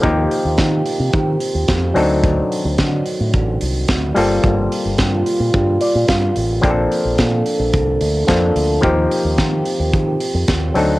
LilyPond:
<<
  \new Staff \with { instrumentName = "Clav" } { \time 4/4 \key ees \lydian \tempo 4 = 109 << { r1 | r1 | r2 r8 d''8 f''4 | r1 |
r1 | } \\ { <f bes c' ees' g'>2.~ <f bes c' ees' g'>8 <fis c' d' ees' a'>8~ | <fis c' d' ees' a'>2.~ <fis c' d' ees' a'>8 <g bes c' f' a'>8~ | <g bes c' f' a'>2.~ <g bes c' f' a'>8 r8 | <f bes c' d' g' a'>2. <f bes c' d' a'>4 |
<f bes c' ees' g'>2.~ <f bes c' ees' g'>8 <fis c' d' ees' a'>8 | } >> }
  \new Staff \with { instrumentName = "French horn section" } { \time 4/4 \key ees \lydian << { <ees f' g'>2.~ <ees f' g'>8 <d ees fis'>8~ | <d ees fis'>2.~ <d ees fis'>8 <bes f'>8~ | <bes f'>1 | <bes d'>1 |
<ees f' g'>2.~ <ees f' g'>8 <d ees fis'>8 | } \\ { c'1~ | c'2.~ c'8 g8~ | g1 | a'1 |
c'1 | } >> }
  \new Staff \with { instrumentName = "Fingered electric bass" } { \clef bass \time 4/4 \key ees \lydian ees,8 r16 ees,16 ees8 r16 c16 ees8 r16 ees,16 f,8 d,8~ | d,8 r16 d,16 d8 r16 a,16 a,,8 c,8 d,8 g,,8 | g,,8 r16 g,,16 g,8 r16 bes,16 g,8 r16 bes,16 g,8 a,,8 | bes,,8 r16 bes,,16 bes,8 r16 bes,,16 c,8 d,8 f,8 d,8 |
ees,8 r16 ees,16 ees8 r16 ees,16 ees8 r16 f,16 ees,8 d,8 | }
  \new DrumStaff \with { instrumentName = "Drums" } \drummode { \time 4/4 <hh bd>8 hho8 <hh bd sn>8 hho8 <hh bd>8 hho8 <hh bd sn>8 hho8 | <hh bd>8 hho8 <hh bd sn>8 hho8 <hh bd>8 hho8 <hh bd sn>8 hho8 | <hh bd>8 hho8 <hh bd sn>8 hho8 <hh bd>8 hho8 <hh bd sn>8 hho8 | <hh bd>8 hho8 <hh bd sn>8 hho8 <hh bd>8 hho8 <hh bd sn>8 hho8 |
<hh bd>8 hho8 <hh bd sn>8 hho8 <hh bd>8 hho8 <hh bd sn>8 hho8 | }
>>